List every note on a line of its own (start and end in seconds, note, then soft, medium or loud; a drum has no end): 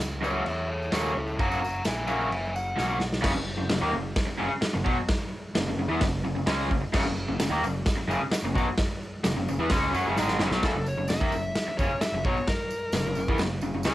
0.00 0.42 C#2 loud
0.00 tambourine medium
0.00 crash medium
0.21 0.40 F#2 medium
0.21 0.41 C#3 medium
0.21 0.41 F#3 medium
0.21 0.42 A#3 medium
0.21 0.42 C#4 loud
0.21 0.42 F#4 loud
0.21 0.45 C#5 medium
0.21 0.45 E5 medium
0.21 tambourine medium
0.46 0.89 E2 medium
0.46 0.68 C#5 medium
0.46 0.69 E5 medium
0.46 tambourine soft
0.46 crash medium
0.69 0.91 A4 medium
0.69 0.92 C#5 medium
0.82 tambourine soft
0.92 1.13 D#2 medium
0.92 1.10 F#2 loud
0.92 1.11 C#3 loud
0.92 1.11 F#3 loud
0.92 1.12 A#3 loud
0.92 1.12 C#4 loud
0.92 1.12 F#4 loud
0.92 1.13 A4 medium
0.92 1.15 C#5 medium
0.92 snare loud
0.92 tambourine loud
0.92 crash medium
1.16 1.37 C#2 medium
1.16 1.38 E4 medium
1.16 1.39 A4 medium
1.27 tambourine soft
1.39 1.81 F#1 medium
1.39 1.57 F#2 medium
1.39 1.57 C#3 medium
1.39 1.58 F#3 loud
1.39 1.58 A#3 medium
1.39 1.59 C#4 loud
1.39 1.58 F#4 loud
1.39 1.59 F#5 medium
1.39 1.60 A#5 medium
1.39 kick loud
1.39 tambourine soft
1.39 crash medium
1.52 tambourine medium
1.61 1.83 F#5 medium
1.61 1.84 A#5 medium
1.61 tambourine medium
1.76 tambourine soft
1.85 2.28 A#1 medium
1.85 2.06 E5 medium
1.85 2.07 G#5 medium
1.85 snare loud
1.85 tambourine medium
1.85 crash medium
2.08 2.26 F#2 medium
2.08 2.26 C#3 medium
2.08 2.27 F#3 medium
2.08 2.27 A#3 medium
2.08 2.27 C#4 medium
2.08 2.28 F#4 loud
2.08 2.29 E5 medium
2.08 2.30 G#5 loud
2.08 tambourine medium
2.20 tambourine soft
2.31 2.74 F#1 medium
2.31 2.53 E5 medium
2.31 2.54 G#5 medium
2.31 crash medium
2.45 tambourine soft
2.56 3.00 F#5 medium
2.56 tambourine medium
2.68 tambourine soft
2.76 3.20 B1 medium
2.76 2.95 F#2 medium
2.76 2.96 C#3 loud
2.76 2.96 F#3 loud
2.76 2.96 A#3 loud
2.76 2.96 C#4 loud
2.76 2.97 F#4 loud
2.76 snare medium
2.80 tambourine medium
3.00 snare medium
3.00 tambourine soft
3.13 snare medium
3.13 tambourine soft
3.21 3.35 F#1 medium
3.21 3.33 F#2 medium
3.21 3.33 C#3 medium
3.21 kick loud
3.21 snare loud
3.21 crash loud
3.34 3.57 F#1 medium
3.34 3.53 F#2 medium
3.34 3.54 C#3 medium
3.57 3.69 F#1 medium
3.57 3.68 F#2 medium
3.57 3.70 C#3 medium
3.69 3.81 F#1 medium
3.69 3.81 F#2 medium
3.69 3.81 C#3 medium
3.69 snare loud
3.69 open hi-hat medium
3.81 3.93 D#2 medium
3.81 3.92 D#3 medium
3.81 3.93 A#3 loud
3.92 4.15 F#1 medium
3.92 4.11 F#2 medium
3.92 4.12 C#3 medium
4.16 kick loud
4.16 snare loud
4.16 open hi-hat medium
4.27 muted overdriven electric guitar stroke medium
4.27 muted picked electric bass stroke soft
4.38 4.51 F#1 medium
4.38 4.48 F#2 medium
4.38 4.50 C#3 loud
4.49 muted overdriven electric guitar stroke medium
4.49 muted picked electric bass stroke soft
4.62 muted picked electric bass stroke soft
4.62 muted overdriven electric guitar stroke medium
4.62 snare loud
4.62 open hi-hat medium
4.74 4.85 F#1 medium
4.74 4.86 F#2 medium
4.74 4.84 C#3 medium
4.85 4.97 B1 loud
4.85 4.96 B2 medium
4.85 4.97 F#3 loud
4.85 kick medium
5.09 kick loud
5.09 snare loud
5.09 open hi-hat medium
5.55 5.65 F#1 medium
5.55 5.67 F#2 medium
5.55 5.67 C#3 medium
5.55 snare loud
5.55 open hi-hat medium
5.66 5.75 F#1 medium
5.66 5.77 F#2 medium
5.66 5.78 C#3 medium
5.76 5.87 F#1 medium
5.76 5.90 F#2 medium
5.76 5.88 C#3 medium
5.88 6.00 E2 loud
5.88 6.00 E3 medium
5.88 6.01 B3 loud
6.01 6.23 F#1 medium
6.01 6.20 F#2 medium
6.01 6.21 C#3 medium
6.01 kick loud
6.01 snare loud
6.01 open hi-hat medium
6.24 6.35 F#1 medium
6.24 6.34 F#2 medium
6.24 6.35 C#3 medium
6.35 6.46 F#1 medium
6.35 6.47 F#2 medium
6.35 6.45 C#3 medium
6.46 6.69 C#2 loud
6.46 6.69 C#3 loud
6.46 6.70 G#3 loud
6.46 6.71 C#4 loud
6.46 snare loud
6.46 open hi-hat medium
6.70 6.82 F#1 medium
6.70 6.80 F#2 medium
6.70 6.82 C#3 medium
6.70 kick medium
6.82 muted overdriven electric guitar stroke medium
6.82 muted picked electric bass stroke soft
6.93 7.04 F#1 loud
6.93 7.03 F#2 medium
6.93 7.04 C#3 loud
6.93 kick loud
6.93 snare loud
6.93 crash loud
7.05 7.27 F#1 medium
7.05 7.24 F#2 medium
7.05 7.24 C#3 medium
7.16 tambourine soft
7.28 7.38 F#1 medium
7.28 7.39 F#2 medium
7.28 7.39 C#3 medium
7.39 7.50 F#1 medium
7.39 7.52 F#2 medium
7.39 7.50 C#3 medium
7.39 snare loud
7.39 open hi-hat medium
7.39 tambourine loud
7.50 7.62 D#2 loud
7.50 7.62 D#3 medium
7.50 7.63 A#3 loud
7.62 7.84 F#1 medium
7.62 7.82 F#2 medium
7.62 7.82 C#3 medium
7.62 tambourine medium
7.86 kick loud
7.86 snare loud
7.86 open hi-hat medium
7.86 tambourine medium
7.97 muted overdriven electric guitar stroke medium
7.97 muted picked electric bass stroke soft
8.08 8.19 F#1 loud
8.08 8.20 F#2 loud
8.08 8.20 C#3 loud
8.08 tambourine medium
8.19 muted picked electric bass stroke soft
8.19 muted overdriven electric guitar stroke medium
8.30 muted picked electric bass stroke soft
8.30 muted overdriven electric guitar stroke medium
8.30 snare loud
8.30 open hi-hat medium
8.30 tambourine loud
8.42 8.54 F#1 medium
8.42 8.56 F#2 medium
8.42 8.54 C#3 medium
8.55 8.66 B1 loud
8.55 8.66 B2 medium
8.55 8.67 F#3 loud
8.55 kick medium
8.55 tambourine medium
8.78 kick loud
8.78 snare loud
8.78 open hi-hat medium
9.03 tambourine soft
9.24 9.35 F#1 medium
9.24 9.35 F#2 medium
9.24 9.35 C#3 medium
9.24 snare loud
9.24 open hi-hat medium
9.24 tambourine loud
9.36 9.47 F#1 medium
9.36 9.47 F#2 medium
9.36 9.48 C#3 medium
9.48 9.58 F#1 medium
9.48 9.60 F#2 medium
9.48 9.59 C#3 medium
9.48 tambourine medium
9.59 9.70 E2 loud
9.59 9.70 E3 medium
9.59 9.71 B3 loud
9.70 9.93 C#2 loud
9.70 9.92 C#3 medium
9.70 9.93 G#3 medium
9.70 9.93 C#4 loud
9.70 kick loud
9.70 snare loud
9.70 open hi-hat medium
9.70 tambourine medium
9.93 10.05 F#2 medium
9.93 10.04 F#3 medium
9.93 10.05 C#4 medium
9.93 tambourine medium
10.06 10.17 F#1 medium
10.06 10.17 F#2 medium
10.06 10.17 C#3 loud
10.16 10.38 G#1 loud
10.16 10.40 G#2 loud
10.16 10.40 D#3 loud
10.16 10.40 G#3 loud
10.16 snare medium
10.16 tambourine medium
10.28 snare medium
10.39 10.49 F#1 loud
10.39 10.51 F#2 medium
10.39 10.51 C#3 loud
10.39 snare loud
10.50 10.62 B1 medium
10.50 10.63 B2 medium
10.50 10.63 F#3 loud
10.50 snare medium
10.62 10.73 F#1 medium
10.62 10.74 F#2 loud
10.62 10.75 C#3 loud
10.62 10.86 A4 loud
10.62 kick loud
10.62 snare loud
10.62 open hi-hat medium
10.62 tambourine soft
10.74 10.96 F#1 medium
10.74 10.94 F#2 medium
10.74 10.94 C#3 medium
10.86 11.08 C#5 medium
10.86 tambourine medium
10.97 11.08 F#1 medium
10.97 11.08 F#2 medium
10.97 11.08 C#3 medium
11.08 11.20 F#1 medium
11.08 11.21 F#2 medium
11.08 11.20 C#3 medium
11.08 11.76 E5 loud
11.08 snare loud
11.08 open hi-hat medium
11.08 tambourine medium
11.20 11.32 D#2 medium
11.20 11.32 D#3 medium
11.20 11.32 A#3 medium
11.20 kick loud
11.32 11.54 F#1 medium
11.32 11.51 F#2 medium
11.32 11.51 C#3 medium
11.32 tambourine medium
11.55 snare loud
11.55 open hi-hat medium
11.55 tambourine medium
11.67 muted picked electric bass stroke soft
11.67 muted overdriven electric guitar stroke medium
11.78 11.89 F#1 medium
11.78 11.89 F#2 medium
11.78 11.90 C#3 medium
11.78 12.01 C#5 medium
11.78 kick loud
11.78 tambourine medium
11.89 muted picked electric bass stroke soft
11.89 muted overdriven electric guitar stroke medium
11.89 tambourine soft
12.00 12.24 E5 medium
12.00 muted picked electric bass stroke soft
12.00 muted overdriven electric guitar stroke medium
12.00 snare loud
12.00 open hi-hat medium
12.00 tambourine loud
12.12 12.23 F#1 medium
12.12 12.25 F#2 medium
12.12 12.25 C#3 medium
12.25 12.36 B1 medium
12.25 12.36 B2 medium
12.25 12.36 F#3 loud
12.25 12.47 C#5 medium
12.25 kick loud
12.37 tambourine soft
12.47 13.37 A#4 loud
12.47 kick loud
12.47 snare loud
12.47 open hi-hat medium
12.47 tambourine soft
12.71 tambourine medium
12.92 13.04 F#1 medium
12.92 13.05 F#2 medium
12.92 13.05 C#3 medium
12.92 snare loud
12.92 open hi-hat medium
12.92 tambourine loud
13.05 13.16 F#1 medium
13.05 13.16 F#2 medium
13.05 13.17 C#3 medium
13.15 13.27 F#1 medium
13.15 13.28 F#2 medium
13.15 13.28 C#3 medium
13.15 tambourine medium
13.28 13.39 E2 loud
13.28 13.39 E3 medium
13.28 13.40 B3 loud
13.28 kick loud
13.38 13.61 F#1 medium
13.38 13.58 F#2 medium
13.38 13.58 C#3 medium
13.38 snare loud
13.38 open hi-hat medium
13.38 tambourine medium
13.61 13.73 F#1 medium
13.61 13.73 F#2 medium
13.61 13.74 C#3 medium
13.61 tambourine medium
13.73 13.84 F#1 medium
13.73 13.86 F#2 medium
13.73 13.84 C#3 medium
13.73 tambourine soft
13.83 13.94 C#2 loud
13.83 13.94 C#3 medium
13.83 13.94 G#3 loud
13.83 13.94 C#4 loud
13.83 13.94 A4 loud
13.83 snare loud
13.83 open hi-hat medium
13.83 tambourine loud